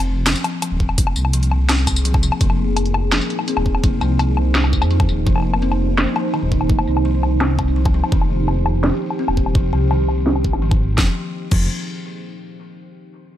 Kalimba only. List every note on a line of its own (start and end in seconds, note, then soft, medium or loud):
0.00 0.25 C4 medium
0.26 0.43 F3 medium
0.44 0.60 F3 medium
0.62 1.32 F3 medium
1.34 1.68 F3 medium
1.69 2.03 C4 medium
2.05 2.22 F3 medium
2.23 2.39 F3 medium
2.41 3.10 F3 medium
3.12 3.46 F3 medium
3.48 3.82 C4 medium
3.84 4.00 F3 medium
4.01 4.17 F3 medium
4.19 4.89 F3 medium
4.91 5.25 F3 medium
5.26 5.60 F3 medium
5.62 5.96 C4 medium
5.98 6.15 F3 medium
6.16 6.32 F3 medium
6.34 6.51 D#3 medium
7.05 7.39 F3 medium
7.41 7.75 C4 medium
7.76 7.93 F3 medium
7.94 8.10 F3 medium
8.12 8.29 D#3 medium
8.84 9.18 F3 medium
9.19 9.53 C4 medium
9.55 9.72 F3 medium
9.73 9.89 F3 medium
9.91 10.08 D#3 medium
10.62 10.96 F3 medium
10.98 11.08 F3 medium
11.52 11.68 F3 loud